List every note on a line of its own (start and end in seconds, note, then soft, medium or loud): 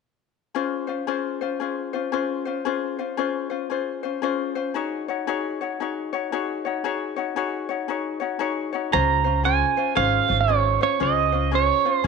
0.55 0.88 C#4 medium
0.55 0.87 F4 medium
0.55 0.88 G#4 medium
0.55 0.86 C5 medium
0.87 1.06 C#4 soft
0.87 1.07 F4 soft
0.87 1.07 C5 soft
1.07 1.41 C#4 medium
1.07 1.41 F4 medium
1.07 1.41 G#4 medium
1.07 1.40 C5 medium
1.41 1.60 C#4 soft
1.41 1.60 F4 soft
1.41 1.61 C5 soft
1.60 1.94 C#4 medium
1.60 1.93 F4 soft
1.60 1.93 G#4 medium
1.60 1.92 C5 medium
1.93 2.11 C#4 soft
1.93 2.12 F4 soft
1.93 2.12 C5 soft
2.12 2.46 C#4 medium
2.12 2.46 F4 medium
2.12 2.46 G#4 medium
2.12 2.44 C5 medium
2.45 2.64 C#4 soft
2.45 2.65 F4 soft
2.45 2.65 C5 soft
2.65 2.99 C#4 medium
2.65 2.98 F4 medium
2.65 2.98 G#4 medium
2.65 2.97 C5 medium
2.99 3.17 C#4 soft
2.99 3.17 F4 soft
2.99 3.18 C5 soft
3.17 3.50 C#4 medium
3.17 3.50 F4 medium
3.17 3.51 G#4 medium
3.17 3.49 C5 medium
3.50 3.69 C#4 soft
3.50 3.70 F4 soft
3.50 3.70 C5 soft
3.70 4.03 C#4 medium
3.70 4.03 F4 medium
3.70 4.03 G#4 soft
3.70 4.02 C5 medium
4.03 4.22 C#4 soft
4.03 4.22 F4 soft
4.03 4.22 C5 soft
4.22 4.56 C#4 medium
4.22 4.55 F4 medium
4.22 4.55 G#4 medium
4.22 4.54 C5 medium
4.55 4.75 C#4 soft
4.55 4.75 F4 soft
4.55 4.75 C5 medium
4.74 5.08 D#4 medium
4.74 5.08 F#4 medium
4.74 5.08 G#4 medium
4.74 5.07 C#5 medium
5.08 5.26 D#4 soft
5.08 5.27 F#4 soft
5.08 5.28 C#5 soft
5.27 5.60 D#4 medium
5.27 5.61 F#4 medium
5.27 5.60 G#4 medium
5.27 5.60 C#5 medium
5.61 5.79 D#4 soft
5.61 5.80 F#4 soft
5.61 5.80 C#5 soft
5.80 6.13 D#4 medium
5.80 6.13 F#4 medium
5.80 6.13 G#4 medium
5.80 6.12 C#5 medium
6.13 6.31 D#4 soft
6.13 6.32 F#4 soft
6.13 6.32 C#5 medium
6.32 6.65 D#4 medium
6.32 6.65 F#4 medium
6.32 6.65 G#4 medium
6.32 6.64 C#5 medium
6.65 6.84 D#4 soft
6.65 6.84 F#4 soft
6.65 6.84 C#5 soft
6.84 7.17 D#4 medium
6.84 7.16 F#4 medium
6.84 7.17 G#4 medium
6.84 7.15 C#5 medium
7.16 7.35 D#4 soft
7.16 7.36 F#4 soft
7.16 7.36 C#5 soft
7.36 7.69 D#4 medium
7.36 7.69 F#4 medium
7.36 7.69 G#4 medium
7.36 7.68 C#5 medium
7.69 7.88 D#4 soft
7.69 7.88 F#4 soft
7.69 7.88 C#5 soft
7.88 8.21 D#4 medium
7.88 8.20 F#4 medium
7.88 8.21 G#4 medium
7.88 8.19 C#5 medium
8.20 8.38 D#4 soft
8.20 8.39 F#4 soft
8.20 8.39 C#5 medium
8.39 8.73 D#4 medium
8.39 8.73 F#4 medium
8.39 8.73 G#4 medium
8.39 8.71 C#5 medium
8.73 8.92 D#4 soft
8.73 8.93 F#4 soft
8.73 8.92 C#5 soft
8.92 9.61 C#2 medium
8.92 9.25 C#4 medium
8.92 9.25 F4 medium
8.92 9.25 G#4 medium
8.92 9.23 C5 medium
8.92 9.45 A#5 medium
9.24 9.44 C#4 soft
9.24 9.44 F4 soft
9.24 9.44 C5 medium
9.44 9.78 C#4 medium
9.44 9.77 F4 medium
9.44 9.77 G#4 medium
9.44 9.76 C5 medium
9.44 9.98 G#5 medium
9.77 9.95 C#4 soft
9.77 9.95 F4 soft
9.77 9.96 C5 soft
9.95 10.18 G#1 medium
9.95 10.29 C#4 medium
9.95 10.28 F4 medium
9.95 10.29 G#4 medium
9.95 10.27 C5 medium
9.95 10.40 F5 medium
10.28 10.76 G#1 medium
10.28 10.47 C#4 soft
10.28 10.48 F4 soft
10.28 10.48 C5 soft
10.41 10.82 C#5 medium
10.48 10.81 C#4 medium
10.48 10.80 F4 medium
10.48 10.81 G#4 medium
10.48 10.79 C5 medium
10.81 10.99 C#4 soft
10.81 10.99 F4 soft
10.81 11.00 C5 soft
10.81 11.02 C#5 medium
11.00 11.68 C#2 medium
11.00 11.33 C#4 medium
11.00 11.32 F4 medium
11.00 11.33 G#4 medium
11.00 11.31 C5 medium
11.00 11.55 D#5 medium
11.32 11.51 C#4 soft
11.32 11.52 F4 soft
11.32 11.52 C5 soft
11.51 11.85 C#4 medium
11.51 11.85 F4 medium
11.51 11.85 G#4 medium
11.51 11.84 C5 medium
11.51 11.93 C#5 medium
11.85 12.03 C#4 soft
11.85 12.03 F4 soft
11.85 12.04 C5 soft
11.93 12.06 C5 medium
12.04 12.07 G#4 medium